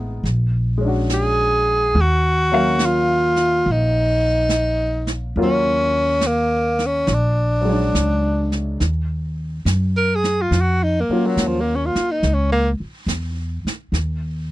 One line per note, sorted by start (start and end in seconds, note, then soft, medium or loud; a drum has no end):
0.00 0.21 A1 medium
0.00 0.24 G#3 soft
0.00 0.24 B3 soft
0.00 0.24 D#4 soft
0.00 0.25 F4 soft
0.24 1.90 A#1 medium
0.24 brush sweep soft
0.24 snare soft
0.78 1.92 G#3 soft
0.78 1.94 C#4 soft
0.85 1.96 D4 soft
0.85 1.98 F#4 soft
1.10 snare soft
1.10 hi-hat pedal soft
1.14 2.02 G#4 medium
1.95 3.60 D#2 medium
1.95 brush sweep soft
2.01 2.87 F#4 medium
2.52 5.35 F#3 soft
2.52 5.35 A#3 soft
2.52 5.35 C#4 soft
2.52 5.36 F5 medium
2.79 snare soft
2.79 hi-hat pedal soft
2.86 3.73 F4 medium
3.36 snare soft
3.64 5.32 A#1 medium
3.64 brush sweep soft
3.72 5.21 D#4 medium
4.49 snare soft
4.49 hi-hat pedal soft
5.07 snare soft
5.35 7.03 D#2 medium
5.35 7.08 F#3 soft
5.35 7.08 A#3 soft
5.35 7.08 C#4 soft
5.35 7.08 F4 soft
5.35 brush sweep soft
5.43 6.28 C#4 medium
6.21 snare soft
6.21 hi-hat pedal soft
6.27 6.88 A#3 medium
6.79 snare soft
6.86 7.15 C#4 medium
7.07 7.90 A#1 medium
7.07 brush sweep soft
7.07 snare soft
7.14 8.55 D4 medium
7.61 8.78 F#3 soft
7.61 8.80 G#3 soft
7.69 8.84 D4 soft
7.69 8.82 C#5 soft
7.94 8.77 C#2 medium
7.94 snare soft
7.94 hi-hat pedal soft
8.52 snare soft
8.80 9.64 D#2 medium
8.80 brush sweep soft
8.80 snare soft
9.65 10.49 F#2 medium
9.65 snare soft
9.65 hi-hat pedal soft
9.97 10.17 A#4 medium
10.15 10.43 G#4 medium
10.24 snare soft
10.42 10.63 F4 medium
10.51 11.05 F2 medium
10.51 brush sweep soft
10.51 snare soft
10.61 10.85 F#4 medium
10.83 11.02 D#4 medium
11.01 11.28 A#3 medium
11.09 12.18 F#3 soft
11.09 12.18 A#3 soft
11.09 12.19 C#4 soft
11.09 12.19 F4 soft
11.09 muted upright bass stroke soft
11.26 11.49 F#3 soft
11.37 11.91 D#2 medium
11.37 snare soft
11.37 hi-hat pedal soft
11.47 11.62 F3 medium
11.61 11.77 A#3 medium
11.76 11.87 C#4 soft
11.86 12.13 F4 medium
11.95 muted upright bass stroke soft
11.95 snare soft
12.11 12.35 D#4 medium
12.23 12.76 C#2 medium
12.23 brush sweep soft
12.23 snare soft
12.34 12.52 C#4 soft
12.52 12.69 A#3 medium
12.80 muted upright bass stroke soft
13.06 13.60 E2 medium
13.06 snare soft
13.06 hi-hat pedal soft
13.65 muted upright bass stroke soft
13.65 snare soft
13.92 14.52 D#2 medium
13.92 brush sweep soft
13.92 snare soft